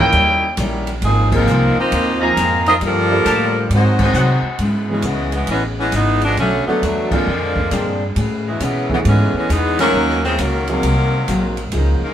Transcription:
Already playing: upright bass G#1, trombone section C#3 F3 A#3, grand piano E3 A#3 C#4 A#4, saxophone section G#3 C#4 F4 A#4, trumpet section E4 C#5 D#5 G5
0.00 grand piano D#4
0.12 upright bass D#2, steel-string acoustic guitar D#3 G3 C#4, kick, ride
0.17 steel-string acoustic guitar E4
0.57 upright bass A#1, steel-string acoustic guitar D#3 G3 C#4 E4, kick, hi-hat pedal, ride
0.87 ride
1.01 upright bass G#1, steel-string acoustic guitar G#2 F3, trombone section D#3 F3 G#3, saxophone section F3 C4 D#4 G#4, kick, ride
1.06 steel-string acoustic guitar A#3 C4
1.31 trombone section D#3 F3 A#3, grand piano F3 A#3 C4 D#4 G#4, kick, crash
1.36 saxophone section F3 C4 D#4 A#4
1.46 upright bass C2, steel-string acoustic guitar G#2 F3, hi-hat pedal
1.50 steel-string acoustic guitar A#3 C4
1.76 trombone section D#3 F3 C4, saxophone section F4, muted upright bass stroke
1.80 saxophone section A#3 D#4 C5
1.92 upright bass D#2, steel-string acoustic guitar G#2 F3 A#3 C4, kick, ride
2.20 grand piano F3 A#3 C4 D#4 F4, trumpet section G#4 C5 F5 A#5
2.36 upright bass F2, steel-string acoustic guitar G#2 F3 A#3 C4, kick, hi-hat pedal, ride
2.66 trombone section F3 C4 D#4, saxophone section C4 F4 A#4 D#5, ride
2.81 upright bass G2, trombone section D3 F3 G3, saxophone section F3 A4 A#4, steel-string acoustic guitar G3 A#3 F4 A4, kick, ride
2.85 saxophone section D4
3.11 grand piano G3 A#3 D4 F4 A4
3.24 upright bass A2, steel-string acoustic guitar G3 A#3, trumpet section G4 A#4 F5 A5, kick, hi-hat pedal, ride
3.28 steel-string acoustic guitar F4 A4
3.70 upright bass G#2, steel-string acoustic guitar G#2 F#3 C4, trombone section D#3 F#3 C4, kick, ride
3.74 saxophone section G#3 D#4 F#4 C5, steel-string acoustic guitar D#4
3.99 trombone section D#3 C4, kick, crash
4.03 trombone section F#3, saxophone section G#3 D#4 F#4 C5
4.13 steel-string acoustic guitar G#2 F#3 C4, upright bass C3, trumpet section F#4 C5 D#5 F#5, hi-hat pedal
4.17 steel-string acoustic guitar D#4
4.42 muted upright bass stroke
4.59 upright bass G#2, steel-string acoustic guitar C#3 G#3, kick, ride
4.63 steel-string acoustic guitar B3 E4
4.89 saxophone section B2 C#3 E3 G#3, grand piano E3 G#3 B3 C#4 G#4
5.02 upright bass C#2, steel-string acoustic guitar C#3 G#3, saxophone section C#3 E3 G#3 B3, kick, hi-hat pedal, ride
5.07 steel-string acoustic guitar B3 E4
5.32 saxophone section C#3 E3 G#3 B3, ride
5.47 upright bass A1, steel-string acoustic guitar C#3, saxophone section E3 G#3 B3 C#4, kick, ride
5.51 steel-string acoustic guitar G#3 B3 E4
5.79 saxophone section E3 G#3 B3 C#4
5.92 upright bass G#1, steel-string acoustic guitar C#3 G#3 B3, saxophone section E3, kick, hi-hat pedal, ride
5.96 saxophone section G#3 B3 D#4, steel-string acoustic guitar E4
6.21 saxophone section F3 G#3 B3 D4, ride
6.37 upright bass B1, steel-string acoustic guitar B2 F#3 A3 D4, saxophone section D3 F#3 A3 C#4, kick, ride
6.66 saxophone section D3 F#3 A3 B3, grand piano F#3 A3 B3 D4 A4, muted upright bass stroke
6.82 upright bass E2, steel-string acoustic guitar B2 F#3 A3 D4, saxophone section B2 D3 F#3 A3, kick, hi-hat pedal, ride
7.11 saxophone section D3 F3 G#3 A#3, grand piano F3 A#3 C4 D4 G#4, kick, crash
7.26 upright bass F2, steel-string acoustic guitar A#2 G#3 C4 D4
7.56 kick
7.71 upright bass G2, steel-string acoustic guitar A#2 G#3 C4 D4, kick, hi-hat pedal, ride
8.15 upright bass A2, steel-string acoustic guitar A3 C#4 G#4 B4, kick, ride
8.48 saxophone section B2 C#3 E3 G#3
8.60 upright bass B2, saxophone section E3 G#3 B3, steel-string acoustic guitar A3 C#4 G#4 B4, kick, hi-hat pedal, ride
8.64 saxophone section C#3
8.90 saxophone section C#3 E3 G#3 B3, grand piano E3 A3 B3 C#4 G#4, kick
9.03 upright bass G#2, steel-string acoustic guitar A3 C#4 G#4 B4, ride
9.08 saxophone section E3 G#3 B3 C#4
9.33 muted upright bass stroke
9.38 saxophone section E3 G#3 B3 C#4
9.49 upright bass E2, saxophone section E3 G#3 B3 D#4, steel-string acoustic guitar A3 C#4 G#4 B4, hi-hat pedal, ride
9.79 saxophone section D#3 F#3 A#3 C#4, snare, ride
9.93 upright bass D#2, steel-string acoustic guitar D#3 A#3 C#4 F#4, grand piano F#3 A#3 C#4 D#4 A#4
10.09 snare
10.23 saxophone section C#3 F3 G#3 C4, snare
10.38 upright bass C#2, saxophone section C#3 D#3 F#3 A#3, steel-string acoustic guitar D#3 A#3 C#4 F#4, kick, hi-hat pedal, ride
10.68 saxophone section C3 D#3 F#3 A#3, grand piano F#3 A#3 C4 D#4 G#4, ride
10.82 upright bass C2, steel-string acoustic guitar G#2 F#3 A#3 C4, kick, ride
11.28 upright bass A#1, steel-string acoustic guitar G#2 F#3 A#3 C4, kick, hi-hat pedal, ride
11.57 ride
11.72 upright bass C#2, steel-string acoustic guitar C#3 F3 A#3, grand piano F3 A#3 C#4 D#4 G#4, kick, ride
11.76 steel-string acoustic guitar D#4
12.01 saxophone section D#3 F3 G#3 A#3, muted upright bass stroke

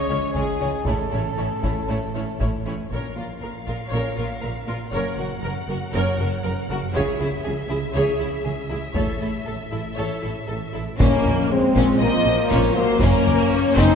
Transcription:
Already playing: french horn section G#3 C#4, trumpet C#5, violin section C#5
0.09 double bass section C#2, cello section C#3, viola section G#3 C#4, violin section C#4 C#5
0.33 double bass section C#2, cello section C#3, viola section G#3 C#4, violin section C#4 G#4 C#5, trumpet G#4, taiko
0.60 double bass section C#2, cello section C#3, viola section G#3 C#4, violin section C#4 C#5
0.85 double bass section A1, cello section A2, french horn section A3 C#4, viola section A3 C#4, violin section E4 A4 C#5, trumpet A4, taiko
1.12 double bass section A1, cello section A2, viola section A3 C#4, violin section E4 C#5
1.37 double bass section A1, cello section A2, viola section A3 C#4, violin section E4 C#5
1.63 double bass section A1, cello section A2, viola section A3 C#4, violin section E4 C#5, taiko
1.89 double bass section A1, cello section A2, viola section A3 C#4, violin section E4 C#5
2.14 double bass section A1, cello section A2, viola section A3 C#4, violin section E4 C#5
2.39 double bass section A1, cello section A2, viola section A3 C#4, violin section E4 C#5, taiko
2.65 double bass section A1, cello section A2, viola section A3 C#4, violin section E4 C#5
2.90 double bass section A#1, timpani A#2, cello section A#2, french horn section A#3 C#4, viola section A#4, violin section C#5 F5, taiko
3.16 double bass section A#1, cello section A#2, violin section F4, viola section A#4
3.41 double bass section A#1, cello section A#2, violin section A#4, viola section A#4
3.66 double bass section A#1, cello section A#2, violin section F4, viola section A#4, taiko
3.91 double bass section A#1, cello section A#2, french horn section A#3 C#4, viola section A#4, violin section C#5
4.16 double bass section A#1, cello section A#2, violin section F4, viola section A#4
4.41 double bass section A#1, cello section A#2, violin section A#4, viola section A#4
4.67 double bass section A#1, cello section A#2, violin section F4, viola section A#4
4.92 double bass section F#1, cello section F#2, french horn section A#3 C#4, viola section A#4, violin section C#5 F#5
5.18 double bass section F#1, cello section F#2, violin section F#4, viola section A#4
5.42 double bass section F#1, cello section F#2, viola section A#4, violin section A#4
5.68 double bass section F#1, cello section F#2, violin section F#4, viola section A#4
5.93 double bass section F#1, cello section F#2, french horn section A#3 C#4, viola section A#4, violin section C#5
6.19 double bass section F#1, cello section F#2, violin section F#4, viola section A#4
6.44 double bass section F#1, cello section F#2, viola section A#4, violin section A#4
6.70 double bass section F#1, cello section F#2, violin section F#4, viola section A#4
6.93 double bass section C#2, cello section C#3, french horn section C#4 E4, viola section G#4, violin section C#5 E5, taiko
7.19 double bass section C#2, cello section C#3, violin section E4, viola section G#4
7.44 double bass section C#2, cello section C#3, viola section G#4, violin section G#4
7.69 double bass section C#2, cello section C#3, violin section E4, viola section G#4
7.93 double bass section C#2, cello section C#3, french horn section C#4 E4, viola section G#4, violin section C#5
8.19 double bass section C#2, cello section C#3, violin section E4, viola section G#4
8.45 double bass section C#2, cello section C#3, violin section G#4, viola section G#4
8.69 double bass section C#2, cello section C#3, violin section E4, viola section G#4
8.95 double bass section A1, cello section A2, french horn section C#4 E4, viola section A4, violin section C#5, taiko
9.20 double bass section A1, cello section A2, violin section E4, viola section A4
9.46 double bass section A1, cello section A2, viola section A4, violin section A4
9.71 double bass section A1, cello section A2, violin section E4, viola section A4
9.96 double bass section A1, cello section A2, french horn section C#4 E4, viola section A4, violin section C#5
10.22 double bass section A1, cello section A2, violin section E4, viola section A4
10.47 double bass section A1, cello section A2, violin section A4, viola section A4
10.73 double bass section A1, cello section A2, violin section E4, viola section A4
10.99 double bass section A#1, timpani A#2, cello section A#2, viola section A#3, french horn section C#4, violin section C#4, taiko
11.25 double bass section A#1, cello section A#2, violin section A#4, taiko low-mid
11.50 viola section G#3, french horn section C4
11.75 double bass section A#1, cello section A#2, violin section C#4, taiko
12.00 double bass section A#1, cello section A#2, viola section F3, french horn section A#3, violin section A#4 D#5
12.26 double bass section A#1, cello section A#2, violin section F4
12.50 double bass section A#1, cello section A#2, violin section C#4 C#5, taiko
12.75 double bass section A#1, cello section A#2, viola section F#3, french horn section A#3, violin section A#4 C5
13.00 double bass section F#1, cello section F#2, viola section A#3, violin section C#4 A#4, french horn section C#4, taiko
13.26 double bass section F#1, cello section F#2, violin section A#4, taiko low-mid
13.51 violin section C#5
13.75 double bass section F#1, cello section F#2, viola section C4, violin section C#4 C5, french horn section D#4, taiko

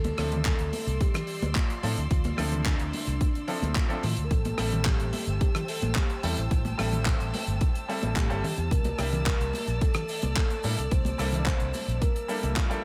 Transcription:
Already playing: fingered electric bass D2, soft synth lead A4, violin section D5 C6 E6
0.04 closed hi-hat, high conga
0.17 fingered electric bass D2, grand piano F3 C4 D4 E4 A4, cross-stick, open hi-hat
0.32 closed hi-hat, low conga
0.45 soft synth lead A4, kick, clap, closed hi-hat
0.59 fingered electric bass D2, closed hi-hat
0.73 open hi-hat, high conga
0.87 fingered electric bass C2, closed hi-hat
1.01 soft synth lead G4, kick, closed hi-hat
1.14 cross-stick, closed hi-hat, low conga
1.27 open hi-hat
1.42 fingered electric bass D2, closed hi-hat, high conga
1.55 soft synth lead F4, kick, clap, closed hi-hat
1.70 closed hi-hat
1.83 fingered electric bass A2, grand piano F3 C4 D4 E4 A4, open hi-hat
1.97 fingered electric bass D2, closed hi-hat
2.11 fingered electric bass D2, soft synth lead F4, kick, closed hi-hat
2.24 closed hi-hat, high conga
2.37 fingered electric bass D2, grand piano F3 C4 D4 E4 A4, soft synth lead D4, cross-stick, open hi-hat
2.52 closed hi-hat, low conga
2.66 kick, clap, closed hi-hat
2.79 fingered electric bass D2, closed hi-hat
2.93 open hi-hat, high conga
3.07 fingered electric bass C2, closed hi-hat
3.21 kick, closed hi-hat
3.35 closed hi-hat
3.47 grand piano F3 C4 D4 E4 A4, open hi-hat
3.62 fingered electric bass D2, closed hi-hat, high conga
3.76 soft synth lead F4, kick, clap, closed hi-hat
3.89 grand piano F3 C4 D4 E4 A4, closed hi-hat
4.03 fingered electric bass A2, open hi-hat, low conga
4.17 fingered electric bass D2, closed hi-hat
4.24 soft synth lead A#4
4.31 fingered electric bass A1, soft synth lead A4, violin section C5 G5 A5, kick, closed hi-hat
4.45 closed hi-hat, high conga
4.57 fingered electric bass A1, grand piano G3 A3 C4 E4 A4, cross-stick, open hi-hat
4.72 closed hi-hat, low conga
4.85 soft synth lead G4, kick, clap, closed hi-hat
5.00 fingered electric bass A1, closed hi-hat
5.13 open hi-hat, high conga
5.27 fingered electric bass G1, closed hi-hat
5.41 soft synth lead G4, kick, closed hi-hat
5.55 cross-stick, closed hi-hat, low conga
5.68 soft synth lead A4, open hi-hat
5.82 fingered electric bass A1, closed hi-hat, high conga
5.95 soft synth lead G4, kick, clap, closed hi-hat
6.10 closed hi-hat
6.23 fingered electric bass E2, grand piano G3 A3 C4 E4 A4, soft synth lead E4, open hi-hat
6.37 fingered electric bass A1, closed hi-hat
6.51 fingered electric bass A1, kick, closed hi-hat
6.65 closed hi-hat, high conga
6.78 fingered electric bass A1, grand piano G3 A3 C4 E4 A4, cross-stick, open hi-hat
6.92 closed hi-hat, low conga
7.06 kick, clap, closed hi-hat
7.20 fingered electric bass A1, closed hi-hat
7.34 open hi-hat, high conga
7.47 fingered electric bass G1, closed hi-hat
7.61 kick, closed hi-hat
7.75 closed hi-hat
7.88 grand piano G3 A3 C4 E4 A4, open hi-hat
8.02 fingered electric bass A1, closed hi-hat, high conga
8.16 fingered electric bass A2, soft synth lead G4, kick, clap, closed hi-hat
8.30 fingered electric bass G1, grand piano G3 A3 C4 E4 A4, closed hi-hat
8.44 muted fingered electric bass stroke, open hi-hat, low conga
8.57 fingered electric bass E2, closed hi-hat
8.71 fingered electric bass C2, soft synth lead A#4, violin section D5, kick, closed hi-hat, cabasa
8.84 closed hi-hat, high conga, cabasa
8.98 fingered electric bass C2, grand piano G3 A#3 D4 E4 G4, cross-stick, open hi-hat, cabasa
9.12 closed hi-hat, low conga, cabasa
9.26 soft synth lead A#4, kick, clap, closed hi-hat, cabasa
9.40 fingered electric bass C2, closed hi-hat, cabasa
9.53 open hi-hat, high conga, cabasa
9.67 fingered electric bass A#1, closed hi-hat, cabasa
9.81 soft synth lead A4, kick, closed hi-hat, cabasa
9.94 cross-stick, closed hi-hat, low conga, cabasa
10.08 open hi-hat, cabasa
10.22 fingered electric bass C2, closed hi-hat, high conga, cabasa
10.36 soft synth lead A4, kick, clap, closed hi-hat, cabasa
10.50 closed hi-hat, cabasa
10.63 fingered electric bass A2, grand piano G3 A#3 D4 E4 A4, open hi-hat, cabasa
10.77 fingered electric bass C2, closed hi-hat, cabasa
10.91 fingered electric bass C2, soft synth lead C5, kick, closed hi-hat, cabasa
11.04 closed hi-hat, high conga, cabasa
11.18 fingered electric bass C2, grand piano G3 A#3 D4 E4 A4, cross-stick, open hi-hat, cabasa
11.32 closed hi-hat, low conga, cabasa
11.40 soft synth lead D5
11.46 soft synth lead C5, kick, clap, closed hi-hat, cabasa
11.60 fingered electric bass C2, closed hi-hat, cabasa
11.74 open hi-hat, high conga, cabasa
11.88 fingered electric bass A#1, closed hi-hat, cabasa
12.01 soft synth lead A#4, kick, closed hi-hat, cabasa
12.16 closed hi-hat, cabasa
12.28 grand piano G3 A#3 D4 E4 A4, open hi-hat, cabasa
12.43 fingered electric bass C2, closed hi-hat, high conga, cabasa
12.56 soft synth lead F4, kick, clap, closed hi-hat, cabasa
12.70 grand piano G3 A#3 D4 E4 A4, closed hi-hat, cabasa

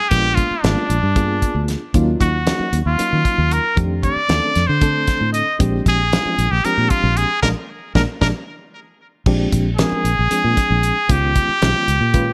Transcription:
Already playing: muted trumpet G#4
0.09 fingered electric bass A#1, reed electric piano G#3 A#3 B3 D4 F4, muted trumpet G4, kick, closed hi-hat
0.35 muted trumpet F4, kick, closed hi-hat
0.51 muted fingered electric bass stroke
0.62 fingered electric bass G#1, reed electric piano G#3 A#3 B3 D4 F4, muted trumpet D4, snare, closed hi-hat
0.90 fingered electric bass A#1, closed hi-hat
1.03 fingered electric bass G2
1.16 reed electric piano A#3 B3 D4 F4 G#4, kick, closed hi-hat
1.42 kick, closed hi-hat
1.55 fingered electric bass D2
1.68 snare, closed hi-hat
1.94 fingered electric bass D#2, reed electric piano F#3 A#3 C#4 D#4 F4, kick, closed hi-hat
2.20 fingered electric bass D#2, muted trumpet F#4, kick, closed hi-hat
2.46 reed electric piano F#3 A#3 C#4 D#4 F#4, snare, closed hi-hat
2.60 muted fingered electric bass stroke
2.73 fingered electric bass D#2, closed hi-hat
2.86 fingered electric bass D#2, muted trumpet F4
2.99 reed electric piano F#3 A#3 C#4 D#4 F4, muted fingered electric bass stroke, closed hi-hat
3.13 fingered electric bass D#3
3.25 kick, closed hi-hat
3.38 fingered electric bass D#2
3.51 muted trumpet A#4, closed hi-hat
3.76 fingered electric bass F2, reed electric piano D#3 A3 C4 D4 G4, kick, closed hi-hat
4.03 muted trumpet D5, kick, closed hi-hat
4.16 muted fingered electric bass stroke
4.29 fingered electric bass D#2, reed electric piano D#3 A3 C4 D4 A4, snare, closed hi-hat
4.55 fingered electric bass F2, snare, closed hi-hat
4.67 fingered electric bass D3, muted trumpet C5
4.81 reed electric piano D3 A3 C4 D4 A4, kick, closed hi-hat
5.07 kick, snare, closed hi-hat
5.21 fingered electric bass A2
5.33 muted trumpet D#5, closed hi-hat
5.59 fingered electric bass A#1, reed electric piano F3 G#3 C4 D4 G4, kick, closed hi-hat
5.86 fingered electric bass A#1, muted trumpet G#4, kick, closed hi-hat
6.13 reed electric piano F3 G#3 C4 D4 F4, snare, closed hi-hat
6.25 muted fingered electric bass stroke
6.38 fingered electric bass A#1, closed hi-hat
6.51 fingered electric bass A#1, muted trumpet G4
6.65 reed electric piano F3 G#3 C4 D4 G4, muted trumpet A#4, muted fingered electric bass stroke, closed hi-hat
6.78 fingered electric bass A#2
6.90 muted trumpet F4, kick, closed hi-hat
7.03 fingered electric bass A#1
7.17 muted trumpet G#4, closed hi-hat
7.42 fingered electric bass A#1, reed electric piano G#3 A#3 D4, muted trumpet A#4, kick, snare
7.95 fingered electric bass A#1, reed electric piano G#3 A#3 D4, muted trumpet A#4, kick, snare
8.21 fingered electric bass A#1, reed electric piano G#3 A#3 D4, muted trumpet A#4, kick, snare
9.26 fingered electric bass A#1, reed electric piano F3 G#3 C4 D4 G4, kick, crash
9.52 fingered electric bass A#1, kick, closed hi-hat
9.77 reed electric piano F3 G#3 C4 D4 A#4, muted trumpet G#4, snare, closed hi-hat
9.92 muted fingered electric bass stroke
10.05 fingered electric bass A#1, closed hi-hat
10.19 fingered electric bass A#1
10.31 reed electric piano F3 G#3 C4 D4 G#4, muted fingered electric bass stroke, closed hi-hat
10.44 fingered electric bass A#2
10.57 kick, snare, closed hi-hat
10.70 fingered electric bass A#1
10.83 closed hi-hat
11.09 fingered electric bass C#2, reed electric piano D#3 G#3 B3 C#4 F4, muted trumpet G4, kick, closed hi-hat
11.36 kick, closed hi-hat
11.49 muted fingered electric bass stroke
11.62 fingered electric bass B1, reed electric piano D#3 G#3 B3 C#4 F4, snare, closed hi-hat
11.88 fingered electric bass C#2, closed hi-hat
12.01 fingered electric bass A#2
12.13 reed electric piano D#3 G#3 C#4 F4 B4, kick, closed hi-hat

